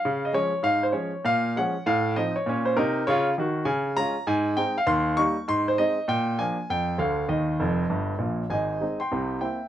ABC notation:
X:1
M:4/4
L:1/8
Q:"Swing" 1/4=199
K:Bbm
V:1 name="Grand piano"
f e d2 f c d2 | f2 g2 f2 e d- | d c B2 d z3 | [K:Ab] a2 b2 a2 g f |
c'2 d'2 c' c e2 | g2 a2 g2 f2 | e6 z2 | [ea]3 [gc']3 [=eg]2 |]
V:2 name="Grand piano" clef=bass
D,2 [F,A,D]2 A,,2 [F,A,D]2 | B,,2 [F,A,D]2 =A,,2 [F,CE]2 | [B,,D]2 [C,E]2 [D,F]2 [E,G]2 | [K:Ab] D,2 [A,DF]2 A,,2 [A,CE]2 |
E,,2 [G,B,E]2 A,,2 [A,CE]2 | B,,2 [F,B,=D]2 F,,2 [=D,,=D,]2 | [E,,E,]2 [F,,,F,,]2 [G,,,G,,]2 [B,,,B,,]2 | [A,,,A,,]2 [A,CE]2 [C,,C,]2 [B,C=E]2 |]